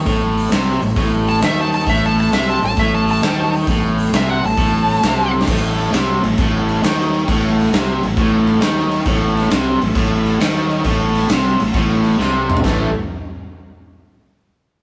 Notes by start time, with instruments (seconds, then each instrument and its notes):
Already playing: tonewheel organ A3 C#5 E5
0.06 fingered electric bass A1, overdriven electric guitar A2, kick, open hi-hat
0.37 open hi-hat
0.51 fingered electric bass C2, overdriven electric guitar C3, snare, open hi-hat
0.81 fingered electric bass A1, overdriven electric guitar A2, open hi-hat
0.96 fingered electric bass A1, overdriven electric guitar A2, kick, open hi-hat
1.27 lead electric guitar A5, open hi-hat
1.41 fingered electric bass D#2, overdriven electric guitar D#3, lead electric guitar E5, snare, open hi-hat
1.61 lead electric guitar A5
1.72 lead electric guitar A5, open hi-hat
1.85 fingered electric bass A1, overdriven electric guitar A2, tonewheel organ A3 C#5 E5, kick, open hi-hat
1.90 lead electric guitar E5
2.06 lead electric guitar A5
2.18 lead electric guitar A5, open hi-hat
2.32 fingered electric bass C2, overdriven electric guitar C3, lead electric guitar E5, snare, open hi-hat
2.50 lead electric guitar A5
2.62 fingered electric bass A1, overdriven electric guitar A2, lead electric guitar A5, open hi-hat
2.77 fingered electric bass A1, overdriven electric guitar A2, lead electric guitar E5, kick, open hi-hat
2.94 lead electric guitar A5
3.08 lead electric guitar A5, open hi-hat
3.22 fingered electric bass D#2, overdriven electric guitar D#3, snare, open hi-hat
3.53 open hi-hat
3.67 fingered electric bass A1, overdriven electric guitar A2, kick, open hi-hat
3.98 open hi-hat
4.12 fingered electric bass C2, overdriven electric guitar C3, lead electric guitar E5, snare, open hi-hat
4.29 lead electric guitar F#5
4.44 fingered electric bass A1, overdriven electric guitar A2, lead electric guitar A5, open hi-hat
4.58 fingered electric bass A1, overdriven electric guitar A2, kick, open hi-hat
4.88 open hi-hat
5.02 fingered electric bass C2, overdriven electric guitar C3, snare, open hi-hat
5.16 tonewheel organ A3 B3
5.22 tonewheel organ C4 D4
5.27 tonewheel organ E4 F4
5.33 tonewheel organ G4 A4, high tom
5.38 tonewheel organ B4 C5, snare
5.43 tonewheel organ A3 C#5 D5 E5
5.47 fingered electric bass A1, overdriven electric guitar A2, kick, crash
5.79 crash
5.92 fingered electric bass C2, overdriven electric guitar C3, snare, crash
6.22 fingered electric bass A1, overdriven electric guitar A2, crash
6.38 fingered electric bass A1, overdriven electric guitar A2, kick, crash
6.69 crash
6.82 fingered electric bass D#2, overdriven electric guitar D#3, snare, crash
7.00 snare
7.14 crash
7.28 fingered electric bass A1, overdriven electric guitar A2, kick, crash
7.59 snare, crash
7.72 fingered electric bass C2, overdriven electric guitar C3, snare, crash
8.03 fingered electric bass A1, overdriven electric guitar A2, crash
8.17 fingered electric bass A1, overdriven electric guitar A2, kick, crash
8.47 crash
8.61 fingered electric bass D#2, overdriven electric guitar D#3, snare, crash
8.78 snare
8.91 crash
9.06 fingered electric bass A1, overdriven electric guitar A2, tonewheel organ A4 C#5 E5, kick, crash
9.37 snare, crash
9.50 fingered electric bass C2, overdriven electric guitar C3, snare, crash
9.81 fingered electric bass A1, overdriven electric guitar A2, crash
9.95 fingered electric bass A1, overdriven electric guitar A2, kick, crash
10.26 crash
10.40 fingered electric bass D#2, overdriven electric guitar D#3, snare, crash
10.57 snare
10.71 crash
10.84 fingered electric bass A1, overdriven electric guitar A2, kick, crash
11.15 snare, crash
11.29 fingered electric bass C2, overdriven electric guitar C3, snare, crash
11.60 fingered electric bass A1, overdriven electric guitar A2, crash
11.74 fingered electric bass A1, overdriven electric guitar A2, kick, crash
12.04 crash
12.19 fingered electric bass C2, overdriven electric guitar C3, snare
12.50 mid tom
12.57 floor tom
12.64 fingered electric bass A1, overdriven electric guitar A2 E3 A3, tonewheel organ A3 E4 C#5, kick, snare, crash